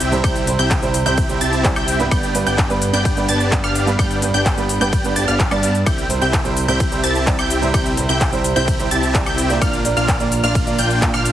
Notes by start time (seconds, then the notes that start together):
Already playing: C2 C4 E4 G4 E5 G5 G6
0.00 open hi-hat, shaker
0.12 C3 G3 C4 E4 C5, closed hi-hat, shaker
0.24 C2 C4 E4 G4 E5 G5 G6, kick, closed hi-hat, ride, high woodblock, shaker
0.36 closed hi-hat, shaker
0.47 C3 G3 C4 E4 C5, open hi-hat, shaker
0.59 C2 C4 E4 G4 E5 G5 G6, closed hi-hat, shaker
0.71 kick, clap, closed hi-hat, ride, shaker
0.82 C3 G3 C4 E4 C5, closed hi-hat, shaker
0.94 open hi-hat, shaker
1.05 C2 C3 G3 C4 E4 G4 C5 E5 G5 G6, closed hi-hat, shaker
1.18 kick, closed hi-hat, ride, shaker
1.29 C3 G3 C4 E4 C5, closed hi-hat, shaker
1.41 C2 C4 E4 G4 E5 A5 A6, open hi-hat, shaker
1.53 closed hi-hat, shaker
1.64 C3 G3 C4 E4 D5, kick, clap, closed hi-hat, ride, shaker
1.76 C2 C4 E4 G4 E5 G5 G6, closed hi-hat, high woodblock
1.88 open hi-hat, shaker
1.99 G2 G3 B3 D4 B4, closed hi-hat, shaker
2.11 G1 B3 D4 G4 D5 G5 G6, kick, closed hi-hat, ride, high woodblock, shaker
2.23 closed hi-hat, shaker
2.34 G2 G3 B3 D4 B4, open hi-hat, shaker
2.47 G1 B3 D4 G4 D5 G5 G6, closed hi-hat, shaker
2.58 kick, clap, closed hi-hat, ride, shaker
2.69 G2 G3 B3 D4 B4, closed hi-hat, shaker
2.82 open hi-hat, shaker
2.93 G1 G2 G3 B3 D4 G4 B4 D5 G5 G6, closed hi-hat, shaker
3.05 kick, closed hi-hat, ride, shaker
3.16 G2 G3 B3 D4 B4, closed hi-hat, shaker
3.29 G1 B3 D4 G4 D5 A5 A6, open hi-hat, shaker
3.40 closed hi-hat, shaker
3.52 G2 G3 B3 D4 D5, kick, clap, closed hi-hat, ride, shaker
3.64 G1 B3 D4 G4 D5 F5 F6, closed hi-hat, high woodblock
3.75 open hi-hat, shaker
3.87 G2 G3 B3 D4 B4, closed hi-hat, shaker
3.99 G1 B3 D4 G4 D5 G5 G6, kick, closed hi-hat, ride, high woodblock, shaker
4.11 closed hi-hat, shaker
4.22 G2 G3 B3 D4 B4, open hi-hat, shaker
4.34 G1 B3 D4 G4 D5 G5 G6, closed hi-hat, shaker
4.46 kick, clap, closed hi-hat, ride, shaker
4.57 G2 G3 B3 D4 B4, closed hi-hat, shaker
4.69 open hi-hat, shaker
4.80 G1 G2 G3 B3 D4 G4 B4 D5 G5 G6, closed hi-hat, shaker
4.93 kick, closed hi-hat, ride, shaker
5.04 G2 G3 B3 D4 B4, closed hi-hat, shaker
5.16 G1 B3 D4 G4 D5 A5 A6, open hi-hat, shaker
5.28 G1 B3 D4 G4 D5 F5 F6, closed hi-hat, shaker
5.40 kick, clap, closed hi-hat, ride, shaker
5.51 G2 G3 B3 D4 G4 D5 A5 A6, clap, closed hi-hat, high woodblock
5.63 open hi-hat, shaker
5.75 closed hi-hat, shaker
5.86 C2 C4 E4 G4 E5 G5 G6, kick, closed hi-hat, ride, high woodblock, shaker
5.98 closed hi-hat, shaker
6.09 C3 G3 C4 E4 C5, open hi-hat, shaker
6.22 C2 C4 E4 G4 E5 G5 G6, closed hi-hat, shaker
6.33 kick, clap, closed hi-hat, ride, shaker
6.44 C3 G3 C4 E4 C5, closed hi-hat, shaker
6.57 open hi-hat, shaker
6.68 C2 C3 G3 C4 E4 G4 C5 E5 G5 G6, closed hi-hat, shaker
6.80 kick, closed hi-hat, ride, shaker
6.91 C3 G3 C4 E4 C5, closed hi-hat, shaker
7.04 C2 C4 E4 G4 E5 A5 A6, open hi-hat, shaker
7.15 closed hi-hat, shaker
7.26 C3 G3 C4 E4 D5, kick, clap, closed hi-hat, ride, shaker
7.39 C2 C4 E4 G4 E5 G5 G6, closed hi-hat, high woodblock
7.50 open hi-hat, shaker
7.62 C3 G3 C4 E4 C5, closed hi-hat, shaker
7.74 C2 C4 E4 G4 E5 G5 G6, kick, closed hi-hat, ride, high woodblock, shaker
7.86 closed hi-hat, shaker
7.97 C3 G3 C4 E4 C5, open hi-hat, shaker
8.09 C2 C4 E4 G4 E5 G5 G6, closed hi-hat, shaker
8.21 kick, clap, closed hi-hat, ride, shaker
8.32 C3 G3 C4 E4 C5, closed hi-hat, shaker
8.44 open hi-hat, shaker
8.55 C2 C3 G3 C4 E4 G4 C5 E5 G5 G6, closed hi-hat, shaker
8.68 kick, closed hi-hat, ride, shaker
8.79 C3 G3 C4 E4 C5, closed hi-hat, shaker
8.91 C2 C4 E4 G4 E5 A5 A6, open hi-hat, shaker
9.03 closed hi-hat, shaker
9.14 C3 G3 C4 E4 D5, kick, clap, closed hi-hat, ride, shaker
9.26 C2 C4 E4 G4 E5 G5 G6, closed hi-hat, high woodblock
9.38 open hi-hat, shaker
9.49 A#2 A#3 D4 F4 D5, closed hi-hat, shaker
9.62 A#1 A#3 D4 F4 D5 F5 F6, kick, closed hi-hat, ride, high woodblock, shaker
9.73 closed hi-hat, shaker
9.84 A#2 A#3 D4 F4 D5, open hi-hat, shaker
9.97 A#1 A#3 D4 F4 D5 F5 F6, closed hi-hat, shaker
10.08 kick, clap, closed hi-hat, ride, shaker
10.19 A#2 A#3 D4 F4 D5, closed hi-hat, shaker
10.32 open hi-hat, shaker
10.43 A#1 A#2 A#3 D4 F4 D5 F5 F6, closed hi-hat, shaker
10.55 kick, closed hi-hat, ride, shaker
10.66 A#2 A#3 D4 F4 D5, closed hi-hat, shaker
10.79 A#1 A#3 D4 F4 D5 G5 G6, open hi-hat, shaker
10.90 closed hi-hat, shaker
11.01 A#2 A#3 D4 F4 F5, kick, clap, closed hi-hat, ride, shaker
11.14 A#1 A#3 D4 F4 D5 F5 F6, closed hi-hat, high woodblock
11.25 open hi-hat, shaker